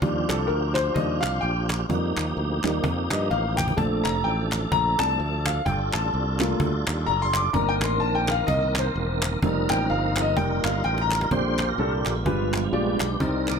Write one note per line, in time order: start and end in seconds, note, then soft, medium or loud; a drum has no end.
0.02 0.25 D#2 loud
0.02 0.35 F3 soft
0.02 1.86 F3 medium
0.02 0.35 G3 soft
0.02 1.86 D4 medium
0.02 0.36 D4 medium
0.02 1.86 F4 medium
0.02 1.86 G4 medium
0.02 cajon bass loud
0.29 0.46 C2 medium
0.29 0.49 A4 medium
0.29 cajon slap loud
0.29 clap medium
0.47 0.89 D2 medium
0.47 0.76 A#4 medium
0.47 cajon slap soft
0.74 0.96 C5 medium
0.74 cajon slap loud
0.74 clap medium
0.94 1.19 D#2 medium
0.94 1.20 F3 soft
0.94 1.20 G3 soft
0.94 1.21 D4 medium
0.94 1.23 D#5 medium
0.94 cajon bass loud
1.21 1.40 C2 medium
1.21 1.42 F5 loud
1.21 cajon slap loud
1.21 clap medium
1.41 1.83 A#1 medium
1.41 1.67 G5 medium
1.41 cajon slap soft
1.70 cajon slap loud
1.70 clap medium
1.89 2.13 F2 loud
1.89 3.74 F3 medium
1.89 2.23 G3 soft
1.89 2.23 A#3 soft
1.89 3.74 A#3 medium
1.89 3.74 D#4 medium
1.89 2.23 D#4 medium
1.89 1.96 F#4 medium
1.89 cajon bass medium
1.95 3.77 G4 medium
2.17 2.34 D#2 medium
2.17 cajon slap loud
2.17 clap medium
2.36 2.60 D2 medium
2.36 cajon slap soft
2.63 2.81 D#2 medium
2.63 2.82 G3 soft
2.63 2.82 A#3 soft
2.63 2.82 D#4 soft
2.63 cajon slap medium
2.63 clap medium
2.84 3.07 F2 medium
2.84 cajon bass loud
3.10 3.28 G2 medium
3.10 3.31 D#5 medium
3.10 cajon slap loud
3.10 clap medium
3.31 3.71 A1 medium
3.31 3.59 F5 medium
3.31 cajon slap soft
3.31 cajon slap medium
3.57 3.78 G5 medium
3.57 cajon bass medium
3.57 clap loud
3.68 cajon bass medium
3.77 4.01 A#1 medium
3.77 5.62 F3 medium
3.77 4.11 A3 soft
3.77 5.62 A3 medium
3.77 4.11 C4 soft
3.77 5.62 D4 medium
3.77 4.11 D4 medium
3.77 5.62 A4 medium
3.77 3.83 A5 medium
3.77 cajon bass loud
4.04 4.22 F1 medium
4.04 4.25 A#5 loud
4.04 cajon slap loud
4.04 clap medium
4.24 4.65 A1 medium
4.24 4.50 G5 medium
4.24 cajon slap soft
4.52 cajon slap loud
4.52 clap medium
4.72 4.95 A#1 medium
4.72 5.00 A#5 loud
4.72 cajon bass loud
4.99 5.16 C2 medium
4.99 5.17 A3 soft
4.99 5.17 C4 soft
4.99 5.17 D4 medium
4.99 5.48 A5 loud
4.99 cajon slap loud
4.99 clap medium
5.19 5.59 D2 medium
5.19 cajon slap soft
5.46 5.67 F5 medium
5.46 cajon slap loud
5.46 clap loud
5.65 5.89 G1 loud
5.65 7.50 G3 medium
5.65 7.50 D4 medium
5.65 7.50 F4 medium
5.65 7.51 A4 medium
5.65 5.94 G5 medium
5.65 cajon bass loud
5.93 6.10 A1 medium
5.93 6.56 A5 medium
5.93 cajon slap loud
5.93 clap medium
6.13 6.53 C2 medium
6.13 cajon slap soft
6.39 6.69 A3 medium
6.39 6.69 A#3 medium
6.39 6.70 F4 medium
6.39 cajon slap loud
6.39 clap medium
6.60 6.83 D2 medium
6.60 cajon bass loud
6.87 7.05 D#2 medium
6.87 cajon slap loud
6.87 clap medium
7.06 7.48 F#1 loud
7.06 7.23 A#5 loud
7.06 cajon slap soft
7.22 7.39 C6 loud
7.34 7.54 D6 medium
7.34 cajon slap loud
7.34 clap loud
7.53 7.82 G1 loud
7.53 7.62 D3 medium
7.53 8.24 D#3 medium
7.53 8.25 A#3 soft
7.53 9.40 A#3 medium
7.53 9.40 C4 medium
7.53 8.25 D4 medium
7.53 9.40 A#4 medium
7.53 7.70 A#5 medium
7.53 cajon bass loud
7.61 9.42 D#3 medium
7.69 7.74 G5 loud
7.81 7.98 A1 medium
7.81 8.00 C6 medium
7.81 cajon slap loud
7.81 clap medium
8.00 8.41 A#1 medium
8.00 8.17 A5 loud
8.15 8.32 G5 medium
8.28 8.48 F5 medium
8.28 cajon slap loud
8.28 clap medium
8.47 8.88 C2 loud
8.47 8.80 D#5 medium
8.47 cajon bass loud
8.75 9.23 C5 medium
8.75 cajon slap loud
8.75 clap medium
8.95 9.36 E1 loud
8.95 cajon slap soft
9.22 cajon slap loud
9.22 clap loud
9.42 9.66 F1 loud
9.42 10.35 F3 medium
9.42 10.33 G3 medium
9.42 10.33 A#3 soft
9.42 10.35 C4 medium
9.42 10.35 D#4 medium
9.42 10.33 D#4 medium
9.42 9.49 A4 medium
9.42 cajon bass loud
9.49 10.37 A#4 medium
9.70 9.87 A1 medium
9.70 9.88 G5 medium
9.70 cajon slap loud
9.70 clap medium
9.89 10.37 G1 medium
9.89 10.22 F5 medium
9.89 cajon slap soft
10.17 cajon slap loud
10.17 clap medium
10.21 10.37 D#5 medium
10.36 10.60 F1 loud
10.36 10.70 G3 medium
10.36 11.30 G3 medium
10.36 10.70 A#3 medium
10.36 11.30 D#4 medium
10.36 10.71 D#4 medium
10.36 11.29 F4 medium
10.36 11.30 A#4 medium
10.36 10.65 G5 loud
10.36 cajon bass loud
10.64 10.81 G1 medium
10.64 10.85 F5 medium
10.64 cajon slap loud
10.64 clap medium
10.84 11.24 A1 medium
10.84 11.00 G5 loud
10.84 cajon slap soft
10.84 cajon slap medium
10.98 11.30 A#5 loud
10.98 cajon slap medium
11.11 cajon slap medium
11.11 clap loud
11.21 cajon slap medium
11.31 11.71 A#1 loud
11.31 12.02 A#2 soft
11.31 11.65 D3 soft
11.31 11.65 G3 soft
11.31 11.64 A#3 medium
11.31 11.65 C4 medium
11.31 11.64 D4 medium
11.31 12.15 F4 medium
11.31 11.64 G4 medium
11.31 11.92 G4 medium
11.31 11.70 C5 loud
11.31 11.65 C5 medium
11.31 cajon bass loud
11.59 cajon slap loud
11.59 clap medium
11.69 11.93 A#4 medium
11.78 12.01 C2 medium
11.78 12.11 A#3 medium
11.78 12.12 D4 medium
11.78 12.12 G4 medium
11.78 12.12 A4 medium
11.78 cajon slap soft
11.93 12.17 G4 medium
12.06 12.26 A#1 medium
12.06 cajon slap medium
12.06 clap medium
12.16 12.25 G#3 medium
12.16 12.26 B3 medium
12.16 12.65 F4 medium
12.25 12.66 G1 medium
12.25 12.96 G2 medium
12.25 12.96 F3 medium
12.25 12.59 G#3 medium
12.25 12.97 G#3 soft
12.25 12.73 B3 medium
12.25 12.59 F4 medium
12.25 12.59 G4 medium
12.25 12.59 B4 medium
12.25 cajon bass loud
12.53 cajon slap loud
12.53 clap medium
12.64 12.69 G4 medium
12.72 12.96 A#1 medium
12.72 13.06 G#3 medium
12.72 13.17 B3 medium
12.72 13.17 D4 medium
12.72 13.06 F4 medium
12.72 13.06 G4 medium
12.72 13.22 G4 medium
12.72 13.06 D5 medium
12.72 cajon slap soft
13.00 13.17 B1 medium
13.00 cajon slap loud
13.00 clap loud
13.20 13.59 C2 loud
13.20 13.59 C3 medium
13.20 13.53 C4 medium
13.20 13.59 C4 medium
13.20 13.53 D#4 medium
13.20 13.59 D#4 medium
13.20 13.53 A#4 medium
13.20 13.59 A#4 medium
13.20 13.53 D5 medium
13.20 cajon bass loud
13.47 13.59 D#3 medium
13.47 13.59 A#3 medium
13.47 13.59 D5 medium
13.47 cajon slap loud
13.47 clap medium